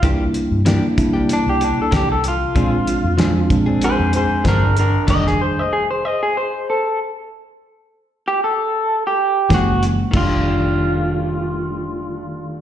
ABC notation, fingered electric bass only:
X:1
M:4/4
L:1/16
Q:"Swing 16ths" 1/4=95
K:Fmix
V:1 name="Fingered electric bass" clef=bass
C,,2 z G,,2 z C,2 z C,,2 z C,,4 | B,,,2 z F,,3 B,,,2 z F,,2 z G,,,4 | F,,,2 z12 z2 | z12 _G,,,4 |
F,,,16 |]